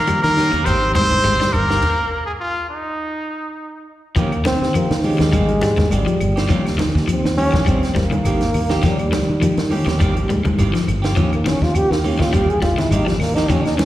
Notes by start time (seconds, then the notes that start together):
Already playing: A#3 A#4
0.07 F3 G3 A#3 D#4 G4, muted clean electric guitar stroke, closed hi-hat, high conga, claves, shekere
0.21 D#3 A#3 A#4, snare, closed hi-hat
0.36 D#3 F3 A#3 C#4 D#4 G4, snare, open hi-hat, shekere
0.52 D#2 D#3 A#3 C#4 G4, closed hi-hat
0.65 G#1 D#3 A#3 C4 G4 C5, muted clean electric guitar stroke, closed hi-hat, high conga, claves, shekere
0.81 F3 A#3 D#4 G4, muted clean electric guitar stroke
0.94 G#2 G3 C4 C5, muted clean electric guitar stroke, kick, closed hi-hat, high conga, shekere
1.11 kick, high conga, low conga
1.24 G#1 D#3 G#3 A#3 C4 G4, closed hi-hat, high conga, claves, shekere
1.40 G3, muted clean electric guitar stroke, snare, high conga
1.52 G1 A#3 A#4, muted clean electric guitar stroke, kick, closed hi-hat, claves, shekere
1.69 A#3 C4 G4, snare, closed hi-hat
1.82 kick, crash
2.26 G#4
2.40 F4
2.69 D#4
4.16 D#2 D#3 F3 A#3 C#4 G4, kick, closed hi-hat, high conga, low conga, shekere
4.32 muted clean electric guitar stroke, closed hi-hat, claves
4.45 D#3 C4, muted clean electric guitar stroke, snare, closed hi-hat, high conga, shekere
4.61 D#3 D#4 G4, muted clean electric guitar stroke, snare
4.74 F3 A#3 D#4 G4, muted clean electric guitar stroke, closed hi-hat, claves, shekere
4.91 D#3, snare, closed hi-hat
5.03 D#3 F3 G#3 A#3 C#4 D#4 G4, open hi-hat, high conga, shekere
5.18 D#2 D#3 A#3 C#4 G4, snare, closed hi-hat, low conga
5.33 G#1 D#3 G3 A#3 C4 G4, kick, closed hi-hat, claves, shekere
5.48 F3 A#3 D#4 G4, muted clean electric guitar stroke, closed hi-hat
5.62 G#2 G3, muted clean electric guitar stroke, snare, closed hi-hat, high conga, shekere
5.77 D#3, kick, snare, closed hi-hat, high conga, low conga
5.91 G#1 D#3 G3 A#3 C4 G4, closed hi-hat, high conga, claves, shekere
6.06 F3, muted clean electric guitar stroke, closed hi-hat
6.20 G1, muted clean electric guitar stroke, closed hi-hat, claves, shekere
6.36 A#3 C4 G4, snare, closed hi-hat
6.49 D#2 D#3 F3 A#3 C#4 G4, kick, closed hi-hat, high conga, low conga, shekere
6.65 muted clean electric guitar stroke, snare, closed hi-hat, claves
6.78 D#3 D#4 G4, muted clean electric guitar stroke, snare, closed hi-hat, high conga, shekere
6.95 D#2 F3 A#3 D#4 G4, muted clean electric guitar stroke, kick, snare
7.08 F3 C4, muted clean electric guitar stroke, closed hi-hat, high conga, claves, shekere
7.24 D#2, snare
7.37 D#3 A#3 C#4 G4, open hi-hat, high conga, shekere
7.52 A#1 D#3 A#3 C#4 G4, kick, snare, low conga
7.66 G#1 D#3 G3 A#3 C4, muted clean electric guitar stroke, kick, closed hi-hat, high conga, claves, shekere
7.83 muted fingered electric bass stroke, muted clean electric guitar stroke, snare, closed hi-hat
7.95 G#1 G3 A#3, muted clean electric guitar stroke, kick, snare, closed hi-hat, high conga, shekere
8.11 D#3, closed hi-hat, high conga, low conga
8.24 G#1 D#3 F3 A#3 C4 D#4 G4, closed hi-hat, high conga, claves, shekere
8.41 muted clean electric guitar stroke, snare, closed hi-hat, high conga
8.54 D#2, muted clean electric guitar stroke, open hi-hat, claves, shekere
8.69 F3 A#3 C4 D#4 G4, snare, closed hi-hat
8.83 D#2 F3 G3 A#3 C#4 G4, kick, snare, closed hi-hat, high conga, low conga, shekere
8.99 muted clean electric guitar stroke, closed hi-hat, claves
9.12 D#3, muted clean electric guitar stroke, snare, closed hi-hat, high conga, shekere
9.27 D#3 D#4 G4, muted clean electric guitar stroke
9.40 F3 A#3 D#4 G4, muted clean electric guitar stroke, closed hi-hat, claves, shekere
9.57 D#3, snare, closed hi-hat
9.70 F3 A#3 C#4 D#4 G4, open hi-hat, high conga, shekere
9.85 D#2 D#3 C#4 G4, snare, low conga
9.99 G#1 D#3 G3 A#3 C4 G4, kick, closed hi-hat, claves, shekere
10.15 F3 A#3 D#4 G4, muted clean electric guitar stroke, closed hi-hat
10.28 G#2 G3, muted clean electric guitar stroke, closed hi-hat, high conga, shekere
10.45 D#3, kick, closed hi-hat, high conga, low conga
10.58 G#1 D#3 A#3 C4 G4, closed hi-hat, high conga, claves, shekere
10.74 F3, muted clean electric guitar stroke, snare, closed hi-hat, high conga
10.88 G1, muted clean electric guitar stroke, closed hi-hat, claves, shekere
11.02 A#3 C4 G4, snare, closed hi-hat
11.15 D#2 D#3 F3 A#3 C#4 G4, kick, closed hi-hat, high conga, low conga, shekere
11.32 A#3, muted clean electric guitar stroke, closed hi-hat, claves
11.44 D#3 C#4 D#4 G4, muted clean electric guitar stroke, snare, closed hi-hat, high conga, shekere
11.61 D#2 F3 A#3 D#4 F4 G4, muted clean electric guitar stroke, kick, snare
11.74 G4, muted clean electric guitar stroke, closed hi-hat, high conga, claves, shekere
11.91 D#2 A#3, snare
12.04 D#3 A#3 C#4 G4, open hi-hat, high conga, shekere
12.19 D#2 D#3 A#3 C#4 F4 G4, kick, snare, low conga
12.33 G#1 D#3 G3 A#3 C4 G4, kick, closed hi-hat, high conga, claves, shekere
12.48 G#4, muted clean electric guitar stroke, muted fingered electric bass stroke, closed hi-hat
12.62 G#1 G3 F4, muted clean electric guitar stroke, kick, snare, closed hi-hat, high conga, shekere
12.78 D#3 E4, snare, closed hi-hat, high conga, low conga
12.90 G#1 D#3 F3 A#3 C4 D#4 G4, closed hi-hat, high conga, claves, shekere
13.06 F3 G3, muted clean electric guitar stroke, snare, closed hi-hat
13.19 D#2 A#3, muted clean electric guitar stroke, snare, open hi-hat, claves, shekere
13.34 F3 A#3 C4 D#4 G4, snare, closed hi-hat
13.49 D#2 D#3 F3 A#3 C#4 G4, kick, closed hi-hat, high conga, low conga, shekere
13.64 D#4, muted clean electric guitar stroke, snare, closed hi-hat, claves
13.78 C#4, muted clean electric guitar stroke, snare, closed hi-hat, high conga, shekere